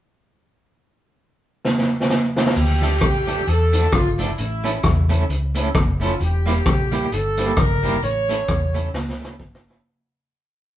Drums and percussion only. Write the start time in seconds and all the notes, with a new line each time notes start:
1.65 snare
1.78 snare
2.00 snare
2.10 snare
2.36 snare
2.46 snare
2.56 crash
2.83 closed hi-hat
3.01 kick, cross-stick, closed hi-hat
3.28 closed hi-hat
3.47 closed hi-hat
3.73 closed hi-hat
3.92 kick, cross-stick, closed hi-hat
4.19 closed hi-hat
4.38 closed hi-hat
4.65 closed hi-hat
4.83 kick, cross-stick, closed hi-hat
5.10 closed hi-hat
5.30 closed hi-hat
5.55 closed hi-hat
5.75 kick, cross-stick, closed hi-hat
6.01 closed hi-hat
6.20 closed hi-hat
6.47 closed hi-hat
6.66 kick, cross-stick, closed hi-hat
6.92 closed hi-hat
7.12 closed hi-hat
7.37 closed hi-hat
7.56 kick, cross-stick, closed hi-hat
7.83 closed hi-hat
8.02 closed hi-hat
8.30 closed hi-hat
8.48 kick, cross-stick, closed hi-hat
8.75 closed hi-hat
8.94 snare
9.09 snare
9.24 snare
9.39 kick, snare
9.55 snare
9.70 snare